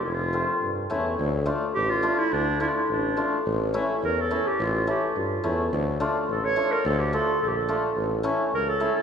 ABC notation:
X:1
M:2/4
L:1/16
Q:1/4=106
K:Aphr
V:1 name="Clarinet"
F6 z2 | [K:Dm] z4 G F2 E | D2 E/2 D/2 E D4 | z4 B A2 G |
F2 G2 F4 | z4 A ^c2 B | A G A2 A/2 G/2 A2 z | z4 B A2 A |]
V:2 name="Hammered dulcimer"
z2 [A,CF] z3 [A,^CE] z | [K:Dm] z2 [A,DF] z3 [A,DF] z | z2 [A,DF] z3 [A,DF] z | z2 [A,^CE] z3 [A,CE] z |
z2 [A,^CE] z3 [A,CE] z | z2 [A,DF] z3 [A,DF] z | z2 [A,DF] z3 [A,DF] z | z2 [A,^CE] z3 [A,CE] z |]
V:3 name="Tuba" clef=bass
F,,,4 G,,2 E,,2 | [K:Dm] D,,4 A,,,4 | D,,4 A,,,4 | A,,,4 E,,4 |
A,,,4 G,,2 E,,2 | D,,4 A,,,4 | D,,4 B,,,4 | A,,,4 ^C,,4 |]